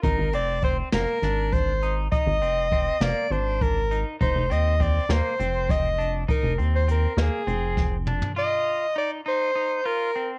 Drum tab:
HH |x-x-x-x-x-x-x-|x-x-x-x-x-x-x-|x-x-x-x-x-x-x-|x-x-x-x-x-----|
SD |------o-o-----|------o-------|------o---o---|------o---o---|
T2 |--------------|--------------|--------------|------------o-|
FT |--------------|--------------|--------------|-------------o|
BD |o---o-----o---|o---o-----o---|o---o-----o---|o---------o---|

HH |--------------|
SD |--------------|
T2 |--------------|
FT |--------------|
BD |--------------|